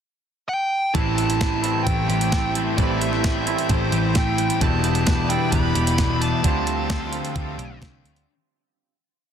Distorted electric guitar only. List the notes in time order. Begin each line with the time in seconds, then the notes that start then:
0.94 A2 E3 A3
2.09 A2 E3 A3
2.32 A2 E3 A3
2.78 A2 E3 A3
3.93 A2 E3 A3
4.16 A2 E3 A3
4.61 E2 B2 E3
5.75 E2 B2 E3
5.98 E2 B2 E3
6.43 D3 A3 D4
7.57 D3 A3 D4
7.80 D3 A3 D4